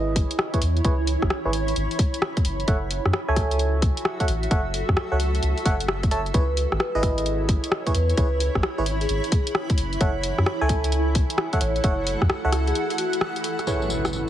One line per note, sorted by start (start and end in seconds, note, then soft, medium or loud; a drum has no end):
0.00 0.24 G#1 medium
0.00 0.50 E4 medium
0.00 3.44 E4 medium
0.00 0.50 G#4 medium
0.00 0.50 B4 medium
0.00 3.49 C#5 medium
0.00 0.50 D#5 loud
0.16 kick medium
0.16 cross-stick soft
0.16 open hi-hat loud
0.31 closed hi-hat medium
0.39 cross-stick loud
0.54 0.59 E4 medium
0.54 0.59 G#4 medium
0.54 0.59 B4 medium
0.54 0.59 C#5 medium
0.54 3.32 B5 medium
0.54 kick medium
0.54 closed hi-hat soft
0.62 0.80 E2 medium
0.62 open hi-hat loud
0.77 closed hi-hat soft
0.85 1.16 C#2 loud
0.85 0.94 E4 medium
0.85 0.94 G#4 medium
0.85 0.94 B4 medium
0.85 0.94 C#5 medium
0.85 kick loud
0.85 closed hi-hat medium
1.07 open hi-hat loud
1.22 1.28 G#1 medium
1.22 kick medium
1.22 cross-stick medium
1.30 cross-stick loud
1.45 1.73 G#1 medium
1.45 1.50 E4 medium
1.45 1.50 G#4 medium
1.45 1.50 B4 medium
1.45 1.50 C#5 medium
1.53 open hi-hat loud
1.68 open hi-hat medium
1.76 1.87 G#1 medium
1.76 closed hi-hat medium
1.91 open hi-hat medium
1.99 kick loud
1.99 open hi-hat loud
2.14 closed hi-hat medium
2.22 cross-stick loud
2.37 kick loud
2.37 closed hi-hat soft
2.45 2.64 F#1 loud
2.45 7.08 F#4 medium
2.45 open hi-hat loud
2.60 closed hi-hat soft
2.68 2.99 F#1 loud
2.68 2.77 A4 medium
2.68 2.77 C#5 medium
2.68 2.77 E5 medium
2.68 2.77 F#5 medium
2.68 kick loud
2.68 closed hi-hat medium
2.91 7.72 E5 medium
2.91 open hi-hat loud
3.06 3.11 F#2 loud
3.06 cross-stick medium
3.13 cross-stick loud
3.28 3.91 C#2 medium
3.28 4.17 A4 loud
3.28 6.34 A4 medium
3.28 4.17 C#5 medium
3.28 4.17 E5 medium
3.28 4.17 G#5 loud
3.36 kick loud
3.36 cross-stick medium
3.36 open hi-hat loud
3.51 closed hi-hat medium
3.59 closed hi-hat medium
3.82 kick loud
3.82 cross-stick soft
3.82 open hi-hat loud
3.97 closed hi-hat medium
4.05 cross-stick loud
4.20 4.25 A4 medium
4.20 4.25 C#5 medium
4.20 4.25 E5 medium
4.20 4.25 F#5 loud
4.20 kick medium
4.20 closed hi-hat soft
4.28 4.47 A1 medium
4.28 open hi-hat loud
4.43 closed hi-hat soft
4.51 4.82 F#1 loud
4.51 4.60 A4 medium
4.51 4.60 C#5 medium
4.51 4.60 E5 medium
4.51 4.60 F#5 medium
4.51 kick loud
4.51 closed hi-hat medium
4.74 open hi-hat medium
4.89 4.95 F#2 medium
4.89 kick medium
4.89 cross-stick medium
4.97 cross-stick loud
5.12 5.39 C#2 medium
5.12 5.17 A4 medium
5.12 5.17 C#5 medium
5.12 5.17 E5 medium
5.12 5.17 F#5 medium
5.20 open hi-hat loud
5.35 open hi-hat medium
5.43 5.54 C#2 medium
5.43 closed hi-hat medium
5.58 open hi-hat medium
5.65 6.31 F#1 medium
5.65 5.75 A4 loud
5.65 5.75 C#5 medium
5.65 5.75 E5 medium
5.65 5.75 F#5 loud
5.65 kick loud
5.65 open hi-hat loud
5.80 closed hi-hat medium
5.88 cross-stick loud
6.03 kick loud
6.03 closed hi-hat soft
6.11 6.21 A4 medium
6.11 6.21 C#5 medium
6.11 6.21 E5 medium
6.11 6.21 A5 medium
6.11 open hi-hat loud
6.26 closed hi-hat soft
6.34 6.66 C#2 loud
6.34 14.29 E4 medium
6.34 6.44 E4 medium
6.34 6.44 G#4 medium
6.34 6.44 B4 medium
6.34 6.60 B4 loud
6.34 6.44 C#5 medium
6.34 kick loud
6.34 closed hi-hat medium
6.55 10.77 C#5 medium
6.55 open hi-hat medium
6.72 6.78 G#1 medium
6.72 cross-stick medium
6.80 7.06 B4 medium
6.80 cross-stick loud
6.95 7.57 G#1 medium
6.95 7.83 E4 medium
6.95 7.83 G#4 medium
6.95 7.83 B4 medium
6.95 7.83 D#5 loud
7.03 kick loud
7.03 cross-stick medium
7.03 open hi-hat loud
7.18 closed hi-hat medium
7.26 closed hi-hat medium
7.49 kick loud
7.49 cross-stick soft
7.49 open hi-hat loud
7.60 11.10 B5 medium
7.60 closed hi-hat medium
7.72 cross-stick loud
7.87 7.92 E4 medium
7.87 7.92 G#4 medium
7.87 7.92 B4 medium
7.87 7.92 C#5 loud
7.87 kick medium
7.87 closed hi-hat medium
7.95 8.13 E2 medium
7.95 8.10 B4 medium
7.95 open hi-hat loud
8.10 closed hi-hat soft
8.17 8.49 C#2 loud
8.17 8.27 E4 medium
8.17 8.27 G#4 medium
8.17 8.27 B4 medium
8.17 8.43 B4 medium
8.17 8.27 C#5 medium
8.17 kick loud
8.17 closed hi-hat medium
8.40 open hi-hat loud
8.55 8.61 G#1 medium
8.55 kick medium
8.55 cross-stick medium
8.63 cross-stick loud
8.78 9.06 G#1 medium
8.78 8.83 E4 medium
8.78 8.83 G#4 medium
8.78 8.83 B4 medium
8.78 8.83 C#5 medium
8.86 open hi-hat loud
9.01 9.19 G#4 loud
9.01 open hi-hat medium
9.09 9.20 G#1 medium
9.09 closed hi-hat medium
9.24 open hi-hat medium
9.32 9.52 G#4 medium
9.32 kick loud
9.32 open hi-hat loud
9.47 closed hi-hat medium
9.55 cross-stick loud
9.70 kick loud
9.70 closed hi-hat medium
9.78 9.96 F#1 loud
9.78 open hi-hat loud
9.93 closed hi-hat soft
10.01 10.32 F#1 medium
10.01 10.10 A4 medium
10.01 10.10 C#5 medium
10.01 10.26 C#5 medium
10.01 10.10 E5 medium
10.01 10.10 F#5 medium
10.01 kick loud
10.01 closed hi-hat medium
10.23 open hi-hat loud
10.36 10.44 F#2 loud
10.36 13.67 A4 medium
10.36 cross-stick medium
10.46 10.72 C#5 medium
10.46 cross-stick loud
10.61 11.24 C#2 medium
10.61 11.49 A4 loud
10.61 11.49 C#5 medium
10.61 11.49 E5 medium
10.61 14.29 F#5 medium
10.61 11.49 G#5 loud
10.69 kick medium
10.69 open hi-hat loud
10.84 closed hi-hat medium
10.92 closed hi-hat medium
11.15 kick loud
11.15 cross-stick soft
11.15 open hi-hat loud
11.30 closed hi-hat medium
11.38 cross-stick loud
11.53 11.58 A4 medium
11.53 11.58 C#5 medium
11.53 11.58 E5 medium
11.53 11.58 F#5 loud
11.53 kick medium
11.53 closed hi-hat medium
11.61 11.80 A1 medium
11.61 11.77 C#5 medium
11.61 open hi-hat loud
11.76 closed hi-hat soft
11.84 12.15 F#1 loud
11.84 11.93 A4 medium
11.84 12.09 C#5 medium
11.84 11.93 C#5 medium
11.84 11.93 E5 medium
11.84 11.93 F#5 medium
11.84 kick loud
11.84 closed hi-hat medium
12.07 open hi-hat loud
12.22 12.28 F#2 loud
12.22 kick medium
12.22 cross-stick medium
12.30 cross-stick loud
12.45 12.72 C#2 medium
12.45 12.50 A4 medium
12.45 12.50 C#5 medium
12.45 12.50 E5 medium
12.45 12.50 F#5 medium
12.52 cross-stick medium
12.52 open hi-hat loud
12.67 12.85 G#4 loud
12.67 open hi-hat medium
12.75 closed hi-hat medium
12.90 open hi-hat medium
12.98 13.18 F#4 medium
12.98 open hi-hat loud
13.13 closed hi-hat medium
13.21 cross-stick loud
13.36 closed hi-hat medium
13.44 open hi-hat loud
13.59 cross-stick soft
13.59 closed hi-hat soft
13.67 14.29 C#4 medium
13.67 14.29 E4 medium
13.67 14.29 G#4 medium
13.67 14.29 B4 medium
13.67 14.29 C#5 medium
13.67 tambourine soft
13.67 impact medium
13.82 tambourine soft
13.90 tambourine medium
14.05 cross-stick medium
14.05 tambourine soft
14.13 tambourine soft